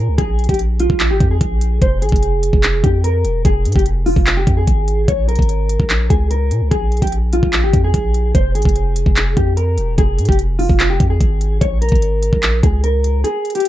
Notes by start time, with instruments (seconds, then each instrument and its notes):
Already playing: clean electric guitar A#4
0.08 808-style bass C#2
0.18 808-style bass A#1, clean electric guitar G#4, kick, closed hi-hat
0.39 closed hi-hat
0.44 closed hi-hat
0.49 808-style bass A#1, clean electric guitar G4, kick, closed hi-hat
0.54 closed hi-hat
0.59 closed hi-hat
0.80 clean electric guitar F4, closed hi-hat
0.90 808-style bass A#1, kick
1.00 clap, closed hi-hat
1.10 808-style bass G#1, clean electric guitar G4
1.20 808-style bass F2, kick, closed hi-hat
1.31 clean electric guitar G#4
1.41 808-style bass A#1, kick, closed hi-hat
1.61 closed hi-hat
1.82 808-style bass F1, clean electric guitar C5, kick, closed hi-hat
2.02 808-style bass G#1, clean electric guitar G#4, closed hi-hat
2.09 808-style bass F1, kick, closed hi-hat
2.16 closed hi-hat
2.23 closed hi-hat
2.43 closed hi-hat
2.53 808-style bass F1, kick
2.63 clap, closed hi-hat
2.84 808-style bass F2, clean electric guitar G4, kick, closed hi-hat
3.04 clean electric guitar A#4, closed hi-hat
3.25 808-style bass E1, closed hi-hat
3.45 808-style bass F1, clean electric guitar G#4, kick, closed hi-hat
3.65 808-style bass G#2, closed hi-hat
3.72 808-style bass F1, clean electric guitar G4, kick, closed hi-hat
3.79 closed hi-hat
3.86 closed hi-hat
4.06 clean electric guitar F4, open hi-hat
4.16 808-style bass F1, kick
4.27 clap, closed hi-hat
4.37 clean electric guitar G4
4.47 808-style bass F2, kick, closed hi-hat
4.57 clean electric guitar G#4
4.67 808-style bass G#1, kick, closed hi-hat
4.88 closed hi-hat
5.08 808-style bass A#1, clean electric guitar C#5, kick, closed hi-hat
5.28 clean electric guitar A#4, closed hi-hat
5.35 808-style bass G#1, kick, closed hi-hat
5.42 closed hi-hat
5.49 closed hi-hat
5.69 closed hi-hat
5.80 808-style bass A#1, kick
5.90 clap, closed hi-hat
6.10 808-style bass C#2, clean electric guitar G#4, kick, closed hi-hat
6.31 clean electric guitar A#4, closed hi-hat
6.51 808-style bass A#2, closed hi-hat
6.61 808-style bass C#2
6.71 808-style bass A#1, clean electric guitar G#4, kick, closed hi-hat
6.92 closed hi-hat
6.97 closed hi-hat
7.02 808-style bass A#1, clean electric guitar G4, kick, closed hi-hat
7.07 closed hi-hat
7.12 closed hi-hat
7.33 clean electric guitar F4, closed hi-hat
7.43 808-style bass A#1, kick
7.53 clap, closed hi-hat
7.63 808-style bass G#1, clean electric guitar G4
7.73 808-style bass F2, kick, closed hi-hat
7.84 clean electric guitar G#4
7.94 808-style bass A#1, kick, closed hi-hat
8.14 closed hi-hat
8.35 808-style bass F1, clean electric guitar C5, kick, closed hi-hat
8.55 808-style bass G#1, clean electric guitar G#4, closed hi-hat
8.62 808-style bass F1, kick, closed hi-hat
8.69 closed hi-hat
8.76 closed hi-hat
8.96 closed hi-hat
9.06 808-style bass F1, kick
9.16 clap, closed hi-hat
9.37 808-style bass F2, clean electric guitar G4, kick, closed hi-hat
9.57 clean electric guitar A#4, closed hi-hat
9.78 808-style bass E1, closed hi-hat
9.98 808-style bass F1, clean electric guitar G#4, kick, closed hi-hat
10.18 808-style bass G#2, closed hi-hat
10.25 808-style bass F1, clean electric guitar G4, kick, closed hi-hat
10.32 closed hi-hat
10.39 closed hi-hat
10.59 clean electric guitar F4, open hi-hat
10.70 808-style bass F1, kick
10.80 clap, closed hi-hat
10.90 clean electric guitar G4
11.00 808-style bass F2, kick, closed hi-hat
11.10 clean electric guitar G#4
11.21 808-style bass G#1, kick, closed hi-hat
11.41 closed hi-hat
11.61 808-style bass A#1, clean electric guitar C#5, kick, closed hi-hat
11.82 clean electric guitar A#4, closed hi-hat
11.89 808-style bass G#1, kick, closed hi-hat
11.95 closed hi-hat
12.02 closed hi-hat
12.23 closed hi-hat
12.33 808-style bass A#1, kick
12.43 clap, closed hi-hat
12.63 808-style bass C#2, clean electric guitar G#4, kick, closed hi-hat
12.84 clean electric guitar A#4, closed hi-hat
13.04 closed hi-hat
13.24 clean electric guitar G#4, closed hi-hat
13.45 closed hi-hat
13.50 closed hi-hat
13.55 clean electric guitar G4, closed hi-hat
13.60 closed hi-hat
13.65 closed hi-hat